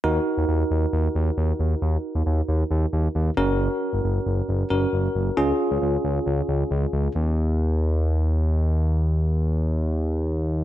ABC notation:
X:1
M:4/4
L:1/16
Q:1/4=135
K:Ebm
V:1 name="Tine electric piano"
[EGB]16- | [EGB]12- [EGB]2 [DGB]2- | [DGB]8- [DGB]2 [DGB]6 | [DFA]16 |
z16 | z16 |]
V:2 name="Analog synth bass" clef=bass
E,,2 z E,, E,,2 E,,2 E,,2 E,,2 E,,2 E,,2 | E,,2 z E,, E,,2 E,,2 E,,2 E,,2 E,,2 G,,,2- | G,,,2 z G,,, G,,,2 G,,,2 G,,,2 G,,,2 G,,,2 G,,,2 | D,,2 z D,, D,,2 D,,2 D,,2 D,,2 D,,2 D,,2 |
E,,16- | E,,16 |]